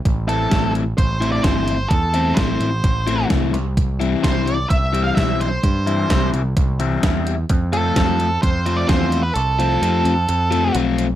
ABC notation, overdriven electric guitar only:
X:1
M:4/4
L:1/8
Q:1/4=129
K:Am
V:1 name="Overdriven electric guitar"
z [E,A,CE] [E,A,CE] z2 [E,A,CE] [E,A,CE] z | z [E,A,CE] [E,A,CE] z2 [E,A,CE] [E,A,CE] z | z [E,G,CE] [E,G,CE] z2 [E,G,CE] [E,G,CE] z | z [E,G,CE] [E,G,CE] z2 [E,G,CE] [E,G,CE] z |
z [F,A,CF] [F,A,CF] z2 [F,A,CF] [F,A,CF] z | z [F,A,CF] [F,A,CF] z2 [F,A,CF] [F,A,CF] z |]